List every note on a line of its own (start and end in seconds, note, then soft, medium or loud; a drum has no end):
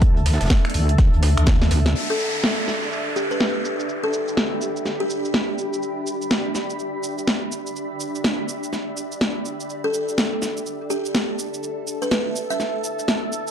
0.00 0.38 D2 medium
0.00 1.94 D4 medium
0.00 3.18 A4 loud
0.00 9.70 E5 medium
0.00 3.62 A5 medium
0.00 kick loud
0.00 closed hi-hat medium
0.16 closed hi-hat soft
0.26 snare medium
0.26 closed hi-hat medium
0.26 open hi-hat loud
0.33 snare medium
0.33 closed hi-hat medium
0.40 0.49 E1 loud
0.40 snare medium
0.40 closed hi-hat medium
0.46 snare medium
0.46 closed hi-hat medium
0.50 kick loud
0.50 snare loud
0.50 closed hi-hat medium
0.65 finger snap medium
0.65 closed hi-hat medium
0.70 closed hi-hat medium
0.74 0.97 D2 loud
0.74 closed hi-hat medium
0.74 open hi-hat loud
0.89 closed hi-hat medium
0.98 1.11 D2 loud
0.98 kick loud
0.98 snare soft
0.98 closed hi-hat medium
1.13 1.35 D2 loud
1.13 closed hi-hat soft
1.23 snare loud
1.23 closed hi-hat medium
1.23 open hi-hat loud
1.37 1.70 D2 medium
1.37 finger snap medium
1.37 closed hi-hat medium
1.46 kick loud
1.46 snare loud
1.46 closed hi-hat medium
1.61 snare soft
1.61 snare medium
1.71 1.94 D2 loud
1.71 snare loud
1.71 closed hi-hat medium
1.71 open hi-hat loud
1.86 snare loud
1.86 closed hi-hat medium
1.95 13.51 D4 medium
1.95 downlifter medium
1.95 shaker soft
2.10 2.25 A4 medium
2.20 shaker medium
2.30 11.09 G4 medium
2.34 shaker soft
2.44 snare loud
2.44 shaker soft
2.68 snare soft
2.68 shaker medium
2.83 shaker soft
2.92 shaker soft
3.16 3.28 G4 medium
3.16 shaker medium
3.27 10.42 B5 medium
3.31 3.37 B4 medium
3.31 shaker soft
3.40 3.50 B4 medium
3.40 snare loud
3.40 shaker soft
3.65 shaker medium
3.80 shaker soft
3.89 shaker soft
4.04 4.19 A4 medium
4.13 shaker medium
4.28 shaker soft
4.37 snare loud
4.37 shaker soft
4.62 shaker medium
4.76 shaker soft
4.86 snare soft
4.86 shaker soft
5.00 5.34 G4 medium
5.10 shaker medium
5.25 shaker soft
5.34 snare loud
5.34 shaker soft
5.58 shaker medium
5.73 shaker soft
5.83 shaker soft
6.07 shaker medium
6.22 shaker soft
6.31 snare loud
6.31 shaker soft
6.55 snare soft
6.55 shaker medium
6.70 shaker soft
6.79 shaker soft
7.03 shaker medium
7.18 shaker soft
7.27 snare loud
7.27 shaker soft
7.52 shaker medium
7.67 shaker soft
7.76 shaker soft
8.00 shaker medium
8.15 shaker soft
8.24 snare loud
8.24 shaker soft
8.49 shaker medium
8.64 shaker soft
8.73 snare soft
8.73 shaker soft
8.97 shaker medium
9.12 shaker soft
9.21 snare loud
9.21 shaker soft
9.45 shaker medium
9.60 shaker soft
9.70 shaker soft
9.84 9.99 A4 medium
9.94 shaker medium
9.99 13.51 A4 medium
10.09 shaker soft
10.18 snare loud
10.18 shaker soft
10.42 snare soft
10.42 shaker medium
10.57 shaker soft
10.66 shaker soft
10.77 13.51 E5 medium
10.90 11.02 G4 medium
10.90 shaker medium
11.05 shaker soft
11.15 snare loud
11.15 shaker soft
11.22 13.51 A5 medium
11.39 shaker medium
11.54 shaker soft
11.63 shaker soft
11.87 shaker medium
12.02 12.08 B4 medium
12.02 shaker soft
12.11 12.21 B4 medium
12.11 snare loud
12.11 shaker soft
12.36 shaker medium
12.50 12.99 E5 medium
12.50 shaker soft
12.60 snare soft
12.60 shaker soft
12.84 shaker medium
12.99 shaker soft
13.08 snare loud
13.08 shaker soft
13.32 shaker medium
13.47 shaker soft